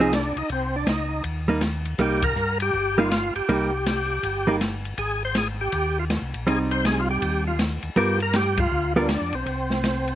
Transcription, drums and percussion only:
0.13 snare, hi-hat pedal, ride
0.37 ride
0.49 kick, ride
0.87 snare, hi-hat pedal, ride
1.24 kick, ride
1.61 snare, hi-hat pedal, ride
1.85 ride
1.99 kick, ride
2.22 kick, ride
2.36 hi-hat pedal
2.60 ride
2.74 kick
3.11 snare, hi-hat pedal, ride
3.36 ride
3.49 kick, ride
3.86 snare, hi-hat pedal, ride
4.23 kick, ride
4.61 snare, hi-hat pedal, ride
4.85 ride
4.98 kick, ride
5.35 snare, hi-hat pedal, ride
5.72 kick, ride
6.10 snare, hi-hat pedal, ride
6.34 ride
6.47 kick, ride
6.71 ride
6.85 snare, hi-hat pedal, ride
7.22 kick, ride
7.59 snare, hi-hat pedal, ride
7.83 ride
7.96 kick, ride
8.20 ride
8.33 snare, hi-hat pedal, ride
8.57 kick, ride
9.09 snare, hi-hat pedal, ride
9.33 ride
9.46 kick, ride
9.70 snare
9.84 snare, hi-hat pedal, ride
10.08 ride

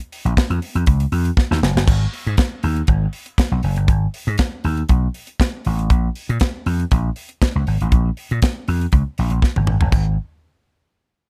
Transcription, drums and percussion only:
0.12 open hi-hat
0.26 closed hi-hat
0.37 kick, snare
0.51 closed hi-hat
0.62 open hi-hat
0.76 closed hi-hat
0.86 kick, closed hi-hat
1.00 closed hi-hat
1.12 open hi-hat
1.25 closed hi-hat
1.37 kick, snare
1.52 snare
1.63 snare
1.77 snare
1.88 kick, crash
2.13 open hi-hat
2.27 closed hi-hat
2.37 kick, snare, closed hi-hat
2.63 open hi-hat
2.76 closed hi-hat
2.87 kick, closed hi-hat
3.13 open hi-hat
3.26 closed hi-hat
3.38 kick, snare, closed hi-hat
3.63 open hi-hat
3.76 closed hi-hat
3.88 kick, closed hi-hat
4.14 open hi-hat
4.28 closed hi-hat
4.38 kick, snare, closed hi-hat
4.64 open hi-hat
4.77 closed hi-hat
4.89 kick, closed hi-hat
5.14 open hi-hat
5.27 closed hi-hat
5.40 kick, snare, closed hi-hat
5.65 open hi-hat
5.79 closed hi-hat
5.90 kick, closed hi-hat
6.15 open hi-hat
6.30 closed hi-hat
6.40 kick, snare, closed hi-hat
6.66 open hi-hat
6.80 closed hi-hat
6.91 kick, closed hi-hat
7.16 open hi-hat
7.29 closed hi-hat
7.42 kick, snare, closed hi-hat
7.67 open hi-hat
7.81 closed hi-hat
7.92 kick, closed hi-hat
8.17 open hi-hat
8.31 closed hi-hat
8.42 kick, snare, closed hi-hat
8.68 open hi-hat
8.81 closed hi-hat
8.92 kick, closed hi-hat
9.18 open hi-hat
9.30 closed hi-hat
9.42 kick, snare
9.56 high tom
9.67 mid tom
9.81 floor tom
9.92 kick, crash

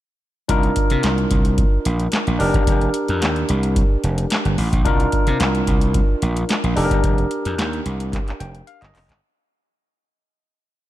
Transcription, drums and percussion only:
0.49 kick, closed hi-hat
0.63 closed hi-hat
0.76 kick, closed hi-hat
0.90 closed hi-hat
1.03 snare, clap, closed hi-hat
1.18 closed hi-hat
1.31 kick, closed hi-hat
1.45 closed hi-hat
1.58 kick, closed hi-hat
1.85 closed hi-hat
2.00 closed hi-hat
2.12 snare, clap, closed hi-hat
2.27 closed hi-hat
2.40 open hi-hat
2.54 kick, closed hi-hat
2.67 kick, closed hi-hat
2.81 closed hi-hat
2.94 closed hi-hat
3.08 closed hi-hat
3.22 snare, clap, closed hi-hat
3.36 closed hi-hat
3.49 closed hi-hat
3.63 closed hi-hat
3.76 kick, closed hi-hat
4.04 closed hi-hat
4.18 closed hi-hat
4.30 snare, clap, closed hi-hat
4.45 closed hi-hat
4.58 open hi-hat
4.73 kick, closed hi-hat
4.85 kick, closed hi-hat
5.00 closed hi-hat
5.12 kick, closed hi-hat
5.27 closed hi-hat
5.40 snare, clap, closed hi-hat
5.55 closed hi-hat
5.67 kick, closed hi-hat
5.81 closed hi-hat
5.94 kick, closed hi-hat
6.22 closed hi-hat
6.37 closed hi-hat
6.49 snare, clap, closed hi-hat
6.64 closed hi-hat
6.77 open hi-hat
6.91 kick, closed hi-hat
7.04 kick, closed hi-hat
7.18 closed hi-hat
7.31 closed hi-hat
7.45 closed hi-hat
7.59 snare, clap, closed hi-hat
7.73 closed hi-hat
7.86 closed hi-hat
8.00 closed hi-hat
8.13 kick, clap, closed hi-hat
8.28 clap, closed hi-hat
8.40 closed hi-hat
8.55 closed hi-hat
8.67 closed hi-hat
8.82 clap, closed hi-hat
8.95 clap, open hi-hat
9.09 clap, closed hi-hat

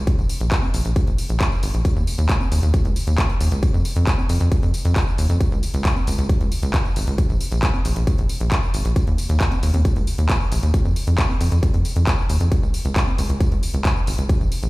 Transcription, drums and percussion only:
0.07 kick, closed hi-hat, tambourine
0.18 tambourine
0.29 open hi-hat, tambourine
0.41 closed hi-hat, tambourine
0.52 kick, clap, closed hi-hat, tambourine
0.63 tambourine, high conga
0.74 open hi-hat, tambourine
0.85 closed hi-hat, tambourine
0.96 kick, closed hi-hat, tambourine
1.07 closed hi-hat, tambourine
1.18 open hi-hat, tambourine
1.30 closed hi-hat, tambourine
1.41 kick, clap, closed hi-hat, tambourine
1.52 tambourine
1.63 open hi-hat, tambourine
1.74 closed hi-hat, tambourine
1.85 kick, closed hi-hat, tambourine
1.96 tambourine
2.07 open hi-hat, tambourine
2.18 closed hi-hat, tambourine
2.29 kick, clap, closed hi-hat, tambourine
2.41 tambourine, high conga
2.52 open hi-hat, tambourine
2.63 closed hi-hat, tambourine
2.74 kick, closed hi-hat, tambourine
2.85 closed hi-hat, tambourine
2.96 open hi-hat, tambourine
3.07 closed hi-hat, tambourine
3.18 kick, clap, closed hi-hat, tambourine
3.29 closed hi-hat, tambourine
3.41 open hi-hat, tambourine
3.52 closed hi-hat, tambourine
3.63 kick, closed hi-hat, tambourine
3.74 tambourine
3.85 open hi-hat, tambourine
3.96 closed hi-hat, tambourine
4.07 kick, clap, closed hi-hat, tambourine
4.18 tambourine, high conga
4.29 open hi-hat, tambourine
4.41 closed hi-hat, tambourine
4.52 kick, closed hi-hat, tambourine
4.63 closed hi-hat, tambourine
4.74 open hi-hat, tambourine
4.85 closed hi-hat, tambourine
4.96 kick, clap, closed hi-hat, tambourine
5.07 tambourine
5.18 open hi-hat, tambourine
5.30 closed hi-hat, tambourine
5.41 kick, closed hi-hat, tambourine
5.52 tambourine
5.63 open hi-hat, tambourine
5.74 closed hi-hat, tambourine
5.85 kick, clap, closed hi-hat, tambourine
5.96 tambourine, high conga
6.07 open hi-hat, tambourine
6.18 closed hi-hat, tambourine
6.29 kick, closed hi-hat, tambourine
6.41 closed hi-hat, tambourine
6.52 open hi-hat, tambourine
6.63 closed hi-hat, tambourine
6.74 kick, clap, closed hi-hat, tambourine
6.85 tambourine
6.96 open hi-hat, tambourine
7.07 closed hi-hat, tambourine
7.18 kick, closed hi-hat, tambourine
7.30 tambourine
7.41 open hi-hat, tambourine
7.52 closed hi-hat, tambourine
7.63 kick, clap, closed hi-hat, tambourine
7.74 tambourine, high conga
7.85 open hi-hat, tambourine
7.96 closed hi-hat, tambourine
8.07 kick, closed hi-hat, tambourine
8.18 closed hi-hat, tambourine
8.29 open hi-hat, tambourine
8.41 closed hi-hat, tambourine
8.52 kick, clap, closed hi-hat, tambourine
8.63 tambourine
8.74 open hi-hat, tambourine
8.85 closed hi-hat, tambourine
8.96 kick, closed hi-hat, tambourine
9.07 closed hi-hat, tambourine
9.18 open hi-hat, tambourine
9.29 closed hi-hat, tambourine
9.41 kick, clap, closed hi-hat, tambourine
9.52 closed hi-hat, tambourine, high conga
9.63 open hi-hat, tambourine
9.74 closed hi-hat, tambourine, high conga
9.85 kick, closed hi-hat, tambourine
9.96 closed hi-hat, tambourine
10.07 open hi-hat, tambourine
10.18 closed hi-hat, tambourine
10.29 kick, clap, closed hi-hat, tambourine
10.41 tambourine
10.52 open hi-hat, tambourine
10.63 closed hi-hat, tambourine
10.74 kick, closed hi-hat, tambourine
10.85 tambourine
10.96 open hi-hat, tambourine
11.07 closed hi-hat, tambourine
11.18 kick, clap, closed hi-hat, tambourine
11.30 tambourine, high conga
11.41 open hi-hat, tambourine
11.52 closed hi-hat, tambourine
11.63 kick, closed hi-hat, tambourine
11.74 closed hi-hat, tambourine
11.85 open hi-hat, tambourine
11.96 closed hi-hat, tambourine
12.07 kick, clap, closed hi-hat, tambourine
12.18 tambourine
12.29 open hi-hat, tambourine
12.41 closed hi-hat, tambourine
12.52 kick, closed hi-hat, tambourine
12.63 tambourine
12.74 open hi-hat, tambourine
12.85 closed hi-hat, tambourine
12.96 kick, clap, closed hi-hat, tambourine
13.07 tambourine, high conga
13.18 open hi-hat, tambourine
13.30 closed hi-hat, tambourine
13.40 kick, closed hi-hat, tambourine
13.52 closed hi-hat, tambourine
13.63 open hi-hat, tambourine
13.74 closed hi-hat, tambourine
13.85 kick, clap, closed hi-hat, tambourine
13.96 tambourine
14.07 open hi-hat, tambourine
14.18 closed hi-hat, tambourine
14.29 kick, closed hi-hat, tambourine
14.41 tambourine
14.52 open hi-hat, tambourine
14.63 closed hi-hat, tambourine

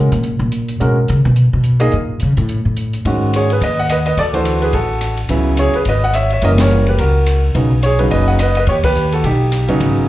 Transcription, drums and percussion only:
0.12 closed hi-hat
0.23 closed hi-hat
0.52 closed hi-hat
0.68 closed hi-hat
0.81 closed hi-hat
1.08 closed hi-hat
1.36 closed hi-hat
1.64 closed hi-hat
1.80 closed hi-hat
1.92 closed hi-hat
2.20 closed hi-hat
2.37 closed hi-hat
2.49 closed hi-hat
2.77 closed hi-hat
2.93 closed hi-hat
3.05 kick, ride
3.33 hi-hat pedal, ride
3.50 ride
3.61 kick, ride
3.89 cross-stick, hi-hat pedal, ride
4.06 ride
4.17 kick, ride
4.34 ride
4.45 hi-hat pedal, ride
4.62 ride
4.73 kick, ride
5.01 cross-stick, hi-hat pedal, ride
5.17 ride
5.29 kick, ride
5.57 hi-hat pedal, ride
5.74 ride
5.85 kick, ride
6.13 cross-stick, hi-hat pedal, ride
6.30 ride
6.42 kick, ride
6.58 snare, ride
6.70 hi-hat pedal
6.87 ride
6.98 kick, ride
7.26 cross-stick, hi-hat pedal, ride
7.55 kick, ride
7.83 hi-hat pedal, ride
7.99 ride
8.11 kick, ride
8.39 cross-stick, hi-hat pedal, ride
8.55 ride
8.67 kick, ride
8.84 kick, ride
8.95 hi-hat pedal
9.12 ride
9.24 kick, ride
9.52 cross-stick, hi-hat pedal, ride
9.68 ride
9.80 kick, ride

